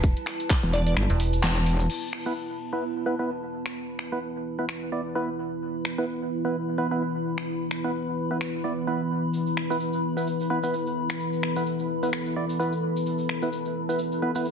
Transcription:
0.00 0.15 E1 medium
0.00 1.86 B3 medium
0.00 1.86 E4 medium
0.00 1.89 E4 medium
0.00 1.88 G4 medium
0.00 1.90 B4 medium
0.00 3.32 A5 medium
0.00 kick loud
0.00 closed hi-hat medium
0.00 cabasa medium
0.17 closed hi-hat soft
0.17 cabasa soft
0.27 finger snap medium
0.27 clap soft
0.27 open hi-hat loud
0.39 closed hi-hat medium
0.39 cabasa medium
0.50 kick loud
0.50 clap loud
0.50 closed hi-hat medium
0.50 cabasa medium
0.63 0.95 E1 loud
0.63 closed hi-hat soft
0.63 cabasa soft
0.73 0.82 D5 medium
0.73 open hi-hat medium
0.86 0.93 D5 medium
0.86 closed hi-hat medium
0.86 cabasa medium
0.97 1.08 G1 loud
0.97 finger snap medium
0.97 closed hi-hat medium
0.97 cabasa medium
1.10 1.42 E1 loud
1.10 closed hi-hat soft
1.10 cabasa soft
1.20 open hi-hat loud
1.33 closed hi-hat soft
1.33 cabasa medium
1.43 1.88 E1 loud
1.43 clap loud
1.43 closed hi-hat medium
1.43 cabasa medium
1.56 closed hi-hat soft
1.56 cabasa soft
1.66 open hi-hat medium
1.80 cabasa medium
1.90 14.51 E3 medium
1.90 14.51 B3 medium
1.90 14.51 E4 medium
1.90 9.30 B4 medium
1.90 5.61 E5 medium
1.90 crash medium
2.13 finger snap medium
2.26 2.33 B3 medium
2.26 2.33 E4 medium
2.26 2.33 B4 loud
2.31 14.51 B4 medium
2.73 2.84 B3 medium
2.73 2.84 E4 medium
2.73 2.84 B4 medium
3.06 3.15 B3 medium
3.06 3.15 E4 medium
3.06 3.15 B4 loud
3.19 3.30 B3 medium
3.19 3.30 E4 medium
3.19 3.30 B4 medium
3.33 14.51 B5 medium
3.66 finger snap medium
3.99 finger snap medium
4.12 4.19 B3 medium
4.12 4.19 E4 medium
4.12 4.19 B4 loud
4.59 4.65 B3 medium
4.59 4.65 E4 medium
4.59 4.65 B4 medium
4.69 finger snap medium
4.92 5.01 B3 medium
4.92 5.01 E4 medium
4.92 5.01 D5 medium
5.15 5.29 B3 medium
5.15 5.29 E4 medium
5.15 5.29 B4 loud
5.62 9.33 D5 medium
5.85 finger snap medium
5.98 6.05 B3 medium
5.98 6.05 E4 medium
5.98 6.05 B4 loud
6.45 6.56 B3 medium
6.45 6.56 E4 medium
6.45 6.56 B4 medium
6.78 6.87 B3 medium
6.78 6.87 E4 medium
6.78 6.87 B4 loud
6.91 7.02 B3 medium
6.91 7.02 E4 medium
6.91 7.02 B4 medium
7.38 finger snap medium
7.71 finger snap medium
7.84 7.91 B3 medium
7.84 7.91 E4 medium
7.84 7.91 B4 loud
8.31 8.38 B3 medium
8.31 8.38 E4 medium
8.31 8.38 B4 medium
8.41 finger snap medium
8.64 8.73 B3 medium
8.64 8.73 E4 medium
8.64 8.73 D5 medium
8.87 9.01 B3 medium
8.87 9.01 E4 medium
8.87 9.01 B4 loud
9.34 14.51 A4 medium
9.34 13.05 E5 medium
9.34 cabasa medium
9.47 cabasa soft
9.57 finger snap medium
9.70 9.77 B3 medium
9.70 9.77 E4 medium
9.70 9.77 B4 loud
9.70 cabasa medium
9.80 cabasa medium
9.93 cabasa soft
10.17 10.28 B3 medium
10.17 10.28 E4 medium
10.17 10.28 B4 medium
10.17 cabasa medium
10.27 cabasa medium
10.40 cabasa soft
10.50 10.59 B3 loud
10.50 10.59 E4 medium
10.50 10.59 B4 loud
10.63 10.74 B3 medium
10.63 10.74 E4 medium
10.63 10.74 B4 medium
10.63 cabasa medium
10.74 cabasa medium
10.87 cabasa soft
11.09 finger snap medium
11.09 cabasa medium
11.20 cabasa medium
11.33 cabasa soft
11.43 finger snap medium
11.56 11.63 B3 medium
11.56 11.63 E4 medium
11.56 11.63 B4 loud
11.56 cabasa medium
11.66 cabasa medium
11.79 cabasa soft
12.03 12.10 B3 medium
12.03 12.10 E4 medium
12.03 12.10 B4 medium
12.03 cabasa medium
12.13 finger snap medium
12.13 cabasa medium
12.26 cabasa soft
12.36 12.45 B3 medium
12.36 12.45 E4 medium
12.36 12.45 D5 medium
12.50 cabasa medium
12.60 12.73 B3 medium
12.60 12.73 E4 medium
12.60 12.73 B4 loud
12.60 cabasa medium
12.72 cabasa soft
12.96 cabasa medium
13.06 14.51 A5 medium
13.06 cabasa medium
13.18 cabasa soft
13.29 finger snap medium
13.42 13.49 B3 medium
13.42 13.49 E4 medium
13.42 13.49 B4 loud
13.42 cabasa medium
13.53 cabasa medium
13.65 cabasa soft
13.89 14.00 B3 medium
13.89 14.00 E4 medium
13.89 14.00 B4 medium
13.89 cabasa medium
13.99 cabasa medium
14.12 cabasa soft
14.22 14.31 B3 loud
14.22 14.31 E4 medium
14.22 14.31 B4 loud
14.35 14.47 B3 medium
14.35 14.47 E4 medium
14.35 14.47 B4 medium
14.35 cabasa medium
14.45 cabasa medium

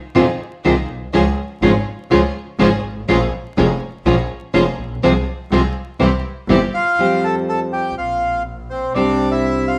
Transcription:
0.15 0.36 F2 medium
0.15 0.24 C3 medium
0.15 0.24 D#3 medium
0.15 0.24 G#3 medium
0.15 0.25 C4 medium
0.15 0.36 D#4 medium
0.15 0.25 F4 loud
0.15 0.36 F4 medium
0.15 0.36 G#4 medium
0.64 0.85 C2 medium
0.64 0.74 C3 medium
0.64 0.73 D#3 medium
0.64 0.74 G#3 medium
0.64 0.74 C4 loud
0.64 0.85 D#4 medium
0.64 0.85 F4 medium
0.64 0.74 F4 loud
0.64 0.85 G#4 medium
0.89 1.12 B1 medium
1.13 1.33 C#2 loud
1.13 1.22 C#3 medium
1.13 1.22 F3 medium
1.13 1.23 G#3 medium
1.13 1.34 C#4 medium
1.13 1.23 C#4 medium
1.13 1.34 F4 medium
1.13 1.23 F4 medium
1.13 1.34 G#4 medium
1.62 1.82 G#1 loud
1.62 1.71 C#3 medium
1.62 1.71 F3 medium
1.62 1.71 G#3 medium
1.62 1.83 C#4 medium
1.62 1.71 C#4 loud
1.62 1.83 F4 medium
1.62 1.71 F4 medium
1.62 1.83 G#4 medium
2.10 2.31 C#2 medium
2.10 2.19 C#3 medium
2.10 2.19 F3 loud
2.10 2.20 G#3 medium
2.10 2.31 C#4 medium
2.10 2.20 C#4 medium
2.10 2.20 F4 loud
2.10 2.32 F4 medium
2.10 2.31 G#4 medium
2.59 2.79 G#1 loud
2.59 2.68 C#3 loud
2.59 2.68 F3 medium
2.59 2.68 G#3 loud
2.59 2.68 C#4 loud
2.59 2.80 C#4 medium
2.59 2.69 F4 loud
2.59 2.80 F4 medium
2.59 2.80 G#4 loud
2.84 3.07 G#1 medium
3.08 3.28 A#1 loud
3.08 3.17 F3 medium
3.08 3.17 G#3 loud
3.08 3.29 A#3 medium
3.08 3.17 C#4 medium
3.08 3.29 C#4 medium
3.08 3.17 F4 loud
3.08 3.29 G#4 medium
3.57 3.77 F1 loud
3.57 3.66 F3 medium
3.57 3.66 G#3 medium
3.57 3.77 A#3 medium
3.57 3.66 C#4 medium
3.57 3.77 C#4 medium
3.57 3.66 F4 medium
3.57 3.77 G#4 medium
4.05 4.25 A#1 loud
4.05 4.14 F3 medium
4.05 4.15 G#3 medium
4.05 4.26 A#3 medium
4.05 4.26 C#4 medium
4.05 4.15 C#4 medium
4.05 4.15 F4 medium
4.05 4.26 G#4 medium
4.54 4.74 F1 medium
4.54 4.63 F3 medium
4.54 4.63 G#3 medium
4.54 4.74 A#3 medium
4.54 4.63 C#4 medium
4.54 4.74 C#4 medium
4.54 4.63 F4 loud
4.54 4.75 G#4 medium
4.79 5.01 A#1 medium
5.01 5.22 C2 medium
5.01 5.12 C3 medium
5.01 5.12 F3 loud
5.01 5.12 G#3 loud
5.01 5.23 C4 medium
5.01 5.12 C4 medium
5.01 5.23 F4 medium
5.01 5.12 F4 loud
5.01 5.23 G#4 medium
5.51 5.71 C2 medium
5.51 5.60 C3 medium
5.51 5.60 F3 medium
5.51 5.60 G#3 medium
5.51 5.72 C4 medium
5.51 5.61 C4 medium
5.51 5.72 F4 medium
5.51 5.61 F4 medium
5.51 5.72 G#4 medium
6.00 6.20 C2 loud
6.00 6.09 C3 medium
6.00 6.09 E3 medium
6.00 6.09 G3 medium
6.00 6.09 C4 medium
6.00 6.21 C4 medium
6.00 6.09 E4 medium
6.00 6.21 E4 medium
6.00 6.21 G4 medium
6.48 6.69 G1 loud
6.48 6.58 C3 medium
6.48 6.58 E3 medium
6.48 6.58 G3 medium
6.48 6.70 C4 medium
6.48 6.58 C4 medium
6.48 6.70 E4 medium
6.48 6.59 E4 loud
6.48 6.70 G4 medium
6.74 7.20 F4 medium
6.74 7.24 F5 medium
6.97 7.91 F2 medium
6.97 7.95 F3 medium
6.97 7.96 G3 medium
6.97 8.46 C4 medium
6.97 7.96 G4 medium
7.24 7.36 A4 medium
7.24 7.35 A5 medium
7.49 7.60 A4 medium
7.49 7.60 A5 medium
7.73 7.95 G4 medium
7.73 7.95 G5 medium
7.97 8.90 A#1 medium
7.97 8.43 F4 soft
7.97 8.43 F5 medium
8.70 8.93 C4 soft
8.70 8.93 C5 medium
8.94 9.79 C2 medium
8.94 9.79 C3 medium
8.94 9.79 G3 medium
8.94 9.79 C4 medium
8.94 9.29 D4 medium
8.94 9.79 D4 medium
8.94 9.79 G4 medium
8.94 9.32 D5 medium
9.31 9.66 E4 medium
9.31 9.69 E5 medium
9.68 9.79 F4 soft
9.68 9.79 F5 medium

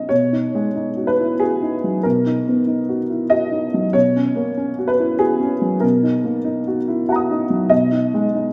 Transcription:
0.00 0.10 B2 soft
0.00 0.13 F#3 soft
0.00 0.13 C#4 soft
0.00 0.12 D#4 soft
0.00 0.12 A#4 medium
0.00 0.12 D#5 medium
0.09 2.01 B2 soft
0.09 1.07 C#5 medium
0.33 0.67 D#4 soft
0.55 0.89 G#3 soft
0.75 1.10 D#4 soft
0.97 1.32 F#4 soft
1.07 1.40 B4 medium
1.20 1.41 E4 soft
1.40 1.75 F#4 soft
1.40 2.04 G#4 medium
1.62 1.96 D#4 soft
1.84 2.05 F#3 soft
2.03 3.91 B2 soft
2.03 2.99 A#4 medium
2.26 2.60 D#4 soft
2.48 2.81 B3 soft
2.67 3.01 D#4 soft
2.89 3.22 F#4 soft
3.10 3.31 E4 soft
3.30 3.65 F#4 soft
3.30 3.94 D#5 medium
3.52 3.86 D#4 soft
3.74 3.95 F#3 soft
3.93 5.79 B2 soft
3.93 4.89 C#5 medium
4.16 4.50 C#4 soft
4.36 4.70 A#3 soft
4.57 4.91 C#4 soft
4.79 5.12 F#4 soft
4.88 5.20 B4 medium
5.00 5.21 E4 soft
5.19 5.54 F#4 soft
5.19 5.82 G#4 medium
5.40 5.74 C#4 soft
5.62 5.83 F#3 soft
5.80 7.67 B2 medium
5.80 6.76 A#4 medium
6.03 6.37 D#4 soft
6.24 6.58 A#3 soft
6.44 6.79 D#4 soft
6.68 7.01 F#4 soft
6.88 7.09 E4 soft
7.09 7.42 F#4 soft
7.09 7.67 F#5 soft
7.09 7.69 A#5 soft
7.16 7.71 D#6 soft
7.31 7.64 D#4 soft
7.50 7.71 F#3 soft
7.70 8.53 B2 medium
7.70 8.53 D#5 medium
7.92 8.25 D#4 soft
8.14 8.47 G#3 soft
8.34 8.53 D#4 soft

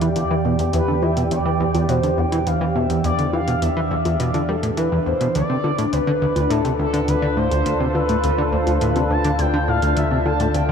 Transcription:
0.00 5.32 E2 medium
0.00 5.35 E3 medium
0.00 0.09 E3 loud
0.00 10.72 D4 medium
0.00 6.81 G4 medium
0.00 0.15 D5 loud
0.00 6.59 D5 medium
0.00 6.10 G5 medium
0.00 closed hi-hat soft
0.16 0.24 E2 medium
0.16 0.56 D5 loud
0.16 closed hi-hat medium
0.31 0.35 E3 loud
0.45 0.56 B2 medium
0.59 0.71 E2 medium
0.59 closed hi-hat soft
0.73 0.81 E2 loud
0.73 1.04 B4 loud
0.73 closed hi-hat medium
0.88 0.96 D3 medium
1.02 1.10 E3 medium
1.02 1.31 E5 loud
1.02 high conga medium
1.17 1.24 B2 medium
1.17 closed hi-hat medium
1.31 1.39 E2 medium
1.31 1.91 D5 loud
1.31 closed hi-hat medium
1.45 1.50 E3 medium
1.60 1.65 E2 loud
1.74 1.86 E2 medium
1.74 closed hi-hat soft
1.74 high conga medium
1.89 2.00 B2 loud
1.89 2.20 C5 medium
1.89 closed hi-hat medium
2.03 2.11 D3 medium
2.03 closed hi-hat soft
2.18 2.25 E2 medium
2.18 2.48 G5 loud
2.32 2.40 E3 medium
2.32 closed hi-hat medium
2.47 2.54 E2 medium
2.47 2.77 F5 loud
2.47 closed hi-hat medium
2.61 2.66 E3 loud
2.75 2.87 B2 medium
2.75 3.04 E5 medium
2.90 3.01 E2 medium
2.90 closed hi-hat medium
3.04 3.12 E2 loud
3.04 3.31 D5 loud
3.04 closed hi-hat medium
3.19 3.26 D3 medium
3.19 closed hi-hat soft
3.33 3.41 E3 medium
3.33 3.64 F5 loud
3.33 high conga medium
3.48 3.55 B2 medium
3.48 closed hi-hat medium
3.62 3.70 E2 medium
3.62 4.21 E5 loud
3.62 closed hi-hat medium
3.77 3.81 E3 loud
3.91 3.95 E2 loud
4.05 4.17 E2 medium
4.05 closed hi-hat soft
4.05 high conga medium
4.20 4.31 B2 loud
4.20 4.50 D5 medium
4.20 closed hi-hat medium
4.34 4.42 D3 medium
4.34 closed hi-hat soft
4.34 high conga medium
4.49 4.56 G3 medium
4.49 4.79 A4 medium
4.63 4.71 A2 medium
4.63 closed hi-hat medium
4.77 4.89 E3 medium
4.77 5.08 B4 medium
4.77 closed hi-hat medium
4.92 4.99 E2 medium
5.06 5.14 E2 medium
5.06 5.35 C5 medium
5.21 5.28 B2 medium
5.21 closed hi-hat soft
5.35 5.43 D2 loud
5.35 10.72 D2 medium
5.35 10.72 D3 medium
5.35 5.94 D5 loud
5.35 closed hi-hat medium
5.49 5.57 C3 medium
5.64 5.71 D3 medium
5.64 high conga medium
5.78 5.86 A2 medium
5.78 closed hi-hat soft
5.93 6.00 D2 medium
5.93 6.52 B4 medium
5.93 closed hi-hat medium
6.07 6.12 D3 medium
6.22 6.26 D2 loud
6.22 10.72 F4 medium
6.36 6.47 D2 medium
6.36 10.72 A4 medium
6.36 closed hi-hat soft
6.36 high conga medium
6.50 6.62 A2 loud
6.50 6.79 A4 medium
6.50 closed hi-hat medium
6.65 6.72 C3 medium
6.65 closed hi-hat soft
6.77 6.87 D2 medium
6.77 7.06 A4 medium
6.77 10.72 A5 medium
6.93 7.01 D3 loud
6.93 closed hi-hat soft
7.08 7.16 D2 medium
7.08 7.39 B4 medium
7.08 closed hi-hat medium
7.22 7.27 D3 loud
7.37 7.48 A2 medium
7.37 7.96 C5 loud
7.51 7.63 D2 medium
7.51 closed hi-hat soft
7.66 7.73 D2 loud
7.66 closed hi-hat medium
7.80 7.88 C3 medium
7.95 8.02 D3 medium
7.95 8.54 B4 loud
7.95 high conga medium
8.09 8.17 A2 medium
8.09 closed hi-hat soft
8.24 8.31 D2 medium
8.24 closed hi-hat medium
8.38 8.43 D3 loud
8.52 8.57 D2 loud
8.52 8.83 C5 medium
8.67 8.78 D2 medium
8.67 closed hi-hat soft
8.67 high conga medium
8.81 8.93 A2 loud
8.81 9.12 B4 medium
8.81 closed hi-hat medium
8.96 9.03 C3 medium
8.96 closed hi-hat soft
8.96 high conga soft
9.10 9.18 D2 medium
9.10 9.41 A5 medium
9.24 9.32 D3 loud
9.24 closed hi-hat soft
9.39 9.47 D2 medium
9.39 9.70 G5 loud
9.39 closed hi-hat medium
9.53 9.58 D3 loud
9.68 9.79 A2 medium
9.68 9.99 F5 medium
9.82 9.94 D2 medium
9.82 closed hi-hat soft
9.97 10.04 D2 loud
9.97 10.27 E5 medium
9.97 closed hi-hat medium
10.11 10.19 C3 medium
10.25 10.33 D3 medium
10.25 10.56 A5 medium
10.25 high conga medium
10.40 10.48 A2 medium
10.40 closed hi-hat soft
10.54 10.62 D2 medium
10.54 10.72 G5 medium
10.54 closed hi-hat medium
10.69 10.72 D3 loud

